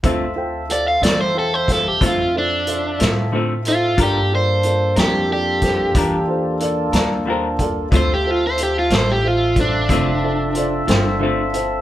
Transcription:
<<
  \new Staff \with { instrumentName = "Grand piano" } { \time 12/8 \key d \minor \tempo 4. = 61 <f' a' c'' e''>8 <f' a' c'' g''>8 <f' a' c'' f''>8 <f' a' c'' f''>8 <f' a' c'' g''>8 <f' a' c'' f''>8 <f' a' c'' e''>8 <f' a' c'' e''>8 <f' a' c'' e''>8 <f' a' c'' e''>8 <f' a' c'' e''>8 <f' a' c'' e''>8 | <f' a' bes' d''>8 <f' a' bes' d''>8 <f' a' bes' d''>8 <f' a' bes' c''>8 <f' a' bes' d''>8 <f' a' bes' c''>8 <f' a' bes' d''>8 <f' a' bes' c''>8 <f' a' bes' d''>8 <f' a' bes' d''>8 <f' a' bes' c'' g''>8 <f' a' bes' d'' f''>8 | <f' a' c'' e''>8 <f' a' c'' e''>8 <f' a' c'' e''>8 <f' a' c'' e''>8 <f' a' c'' e''>8 <f' a' c'' e''>8 <f' a' c'' e''>8 <f' a' c'' e''>8 <f' a' c'' d''>8 <f' a' c'' g''>8 <f' a' c'' e''>8 <f' a' c'' e''>8 | }
  \new Staff \with { instrumentName = "Overdriven electric guitar" } { \time 12/8 \key d \minor r4 d''16 f''16 d''16 c''16 a'16 c''16 a'16 g'16 f'8 d'4 r4 f'8 | g'8 c''4 g'8 g'2 r2 | c''16 g'16 f'16 c''16 g'16 f'16 c''16 g'16 f'8 d'2. r8 | }
  \new Staff \with { instrumentName = "Tonewheel organ" } { \time 12/8 \key d \minor <c' f' a' e''>1. | <bes d' f' a'>1. | <c' f' a' e''>1. | }
  \new Staff \with { instrumentName = "Clean electric guitar" } { \time 12/8 \key d \minor <d a c' f'>8 r4 <a c' f'>8 r4 <d a c' f'>8 r4 <a c' f'>8 <d a c' f'>8 r8 | <g d' f' bes'>8 r4 <d' f' bes'>8 r4 <g d' f' bes'>8 r4 <d' f' bes'>8 <g d' f' bes'>8 r8 | <d a c' f'>8 r4 <a c' f'>8 r4 <d a c' f'>8 r4 <a c' f'>8 <d a c' f'>8 r8 | }
  \new Staff \with { instrumentName = "Upright bass" } { \clef bass \time 12/8 \key d \minor d,4. e,4. f,4. a,4. | g,4. f,4. e,4. ees,4. | d,4. a,,4. f,,4. g,,4. | }
  \new DrumStaff \with { instrumentName = "Drums" } \drummode { \time 12/8 <hh bd>4 hh8 <hh sn>4 <hh bd sn>8 <hh bd>4 hh8 <hh sn>4 hh8 | <hh bd>4 hh8 <hh sn>4 <hh bd sn>8 <hh bd>4 hh8 <hh sn>4 <hh bd>8 | <hh bd>4 hh8 <hh sn>4 <hh bd>8 <hh bd>4 hh8 <hh sn>4 hh8 | }
>>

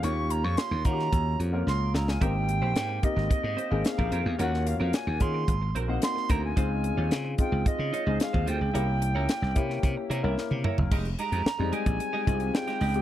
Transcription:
<<
  \new Staff \with { instrumentName = "Flute" } { \time 4/4 \key f \minor \tempo 4 = 110 des'''8 bes''16 des'''16 c'''8 bes''4 r8 c'''8 bes''16 aes''16 | g''4. ees''4. f''4 | ges''8 f''16 f''16 aes''8 c'''4 r8 c'''8 bes''16 aes''16~ | aes''4. g''8 ees''4 f''8 g''8~ |
g''2. r4 | r8 bes''4 aes''4. g''4 | }
  \new Staff \with { instrumentName = "Clean electric guitar" } { \time 4/4 \key f \minor r1 | <c' g' bes'>16 r8 <c' g' c''>16 r4. <c' g' c''>16 <c' g' bes'>16 r16 <c' g' bes'>16 <c' g' bes'>16 r16 | <des' ges' bes'>16 r8 <des' ges' bes'>16 r4. <c' ges' bes'>16 <c' ges' c''>16 r8 <c' ges' bes'>16 r16 | <ees' f' c''>16 r8 <ees' f' des''>16 r4. <ees' f' des''>16 <ees' f' c''>16 r16 <ees' f' c''>16 <ees' f' c''>16 r16 |
<e' bes' des''>16 r8 <e' bes' des''>16 r4. <e' bes' des''>16 <e' bes' e''>16 r8 <e' bes' des''>16 r16 | <aes ees' g'>16 r16 <aes ees' g'>16 <aes ees' g'>16 r8 <aes ees' g'>16 r8 <aes ees' g'>16 r8. <aes ees' g'>16 <aes ees' g'>16 r16 | }
  \new Staff \with { instrumentName = "Grand piano" } { \time 4/4 \key f \minor <bes des' f' g'>4~ <bes des' f' g'>16 r16 <bes des' f' ges' g'>4 r16 <bes des' f' bes'>4 r16 | <bes c' ees' g'>4~ <bes c' ees' g'>16 r16 <bes c' ees' g'>4 r16 <bes c' ees' aes'>4 r16 | <bes des' f' ges'>4~ <bes des' f' ges'>16 r16 <bes des' f' aes'>8 r8. <bes c' ees' ges'>4 r16 | <aes c' ees' f'>4~ <aes c' ees' f'>16 r16 <aes c' ees' f'>4 r16 <aes c' ees' aes'>4 r16 |
<bes des' e' g'>4~ <bes des' e' g'>16 r16 <bes des' e' g'>4 r16 <bes des' e' bes'>4 r16 | r4 r16 <g aes c' ees'>4 r16 <aes c' ees' f' g'>4 r16 <aes c' ees' g'>16 | }
  \new Staff \with { instrumentName = "Slap bass" } { \clef bass \time 4/4 \key f \minor ees,8. f,16 r16 ees,16 ees8 ees,8 f,8 des,8 des,8 | aes,,8. bes,,16 aes,8 r16 aes,,16 r16 aes,16 r16 aes,,16 r16 bes,,16 f,16 e,16 | ees,8. f,16 r16 ees,16 ees8 aes,,8 bes,,8 r8 d,8 | des,8. ees,16 des8 r16 des,16 r16 des16 r16 des,16 r16 ees,16 d,16 des,16 |
c,8. des,16 r16 c,16 c8 c16 r16 c16 c,16 r16 c16 r16 ges,,16 | f,,8 r16 f,16 r16 f,16 r16 bes,,16 r8 c,8 r8 des,8 | }
  \new DrumStaff \with { instrumentName = "Drums" } \drummode { \time 4/4 hh8 hh8 <hh sn>8 <hh bd>16 sn16 <hh bd>8 hh8 sn8 sn16 sn16 | <hh bd>8 hh8 <hh sn>8 <hh bd>16 sn16 <hh bd>8 hh8 <hh sn>16 bd16 hh8 | hh16 sn16 hh8 <hh sn>8 <hh bd>8 <hh bd>8 hh8 <hh sn>16 sn16 <hh bd>8 | <hh bd>8 hh8 <hh sn>8 <hh bd>8 <hh bd>8 hh8 <hh sn>16 bd16 hh8 |
hh8 hh8 <hh sn>16 sn16 <hh bd>16 sn16 <hh bd>8 hh8 sn16 tommh16 toml16 tomfh16 | <cymc bd>16 hh16 hh16 hh16 sn8 hh16 <hh bd>16 hh8 <hh bd>16 hh16 sn16 <hh sn>16 hho16 hh16 | }
>>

